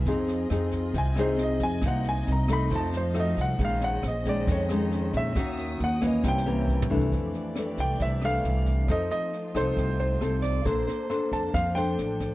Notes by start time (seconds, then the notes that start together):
Already playing: C4 G#4
0.05 F2 F3 C4 D#4 F4 G#4 D#5, kick, snare
0.28 snare
0.50 F2 C4 D#4 G#4, cross-stick, snare
0.71 kick, snare
0.94 C2 C3, kick, snare
0.98 G#5
1.16 C4 D#4 G#4, cross-stick, snare
1.20 C5
1.38 snare
1.43 D#5
1.59 F2 G#5, kick, snare
1.81 C2 C3 A#3 C4 D#4 A#4, kick, cross-stick, snare
1.85 D#4 F#4 F#5
2.04 snare
2.09 G#5
2.27 C2, snare
2.32 A#5
2.48 A3 D#4, kick, cross-stick, snare
2.53 B5
2.70 F2 F3 A3 F5, kick, snare
2.75 A5
2.92 snare
2.97 C5
3.14 A3 D#4 F#4, cross-stick, snare
3.20 D#5
3.37 C2, kick, snare
3.41 F#5
3.58 A#1 A#2 D#3 G#3 C#4 G#4 C5 D#5, kick, snare
3.65 F5
3.81 F#5, snare
4.03 A#1, cross-stick, snare
4.08 D#5
4.25 D#3 G#3 C#4 D5, kick, snare
4.47 F2, kick, snare
4.52 C#5
4.69 D#3 G#3 C#4, cross-stick, snare
4.91 snare
5.13 A#1 E5, kick, snare
5.35 D#2 D#3 A#3 C#4 F#4 A#4 D#6, kick, cross-stick, snare
5.57 snare
5.80 D#2, snare
5.84 F#5
6.01 E3 A#3 C#4, kick, cross-stick, snare
6.06 D#5
6.23 C2 C3 E4 A#4 C#5, kick, snare
6.28 G5
6.38 snare
6.46 E3 A#3 C#4
6.68 kick
6.82 floor tom
6.90 C2 E3 A3 D4
6.97 kick
7.09 F2 A3 D4 G4 D5, kick, snare
7.34 snare
7.55 E3 A3 D4, cross-stick, snare
7.78 C2 G5, kick, snare
7.99 C2 C3 E5, kick, snare
8.22 E3 A3 D4 F5, cross-stick, snare
8.44 C2, snare
8.66 kick, snare
8.88 F2 F3 A3 C4 D#4 F4 A4 C5 D#5, kick, cross-stick, snare
9.11 D#5, snare
9.33 snare
9.55 C2 C4 D#4 A4 C5, kick, cross-stick, snare
9.77 C2 C3, kick, snare
9.99 C5, snare
10.21 C2 C4 D#4 A4, cross-stick, snare
10.42 D5, kick, snare
10.65 A#1 A#3 D4 A4 C5, kick, snare
10.87 C5, snare
11.10 D4 A4 C5, cross-stick, snare
11.32 F2 A5, kick, snare
11.54 F2 F3 F5, kick, snare
11.75 D4 A4 C5 G5, cross-stick, snare
11.98 A1, snare
12.20 kick, snare